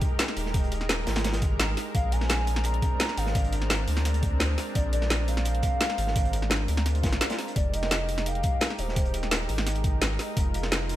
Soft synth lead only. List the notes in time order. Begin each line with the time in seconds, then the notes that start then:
1.95 F5
2.12 G#5
2.65 A#5
3.17 F5
4.75 D5
4.93 D5
5.28 F5
7.56 D5
7.74 D#5
8.26 F5
8.79 C5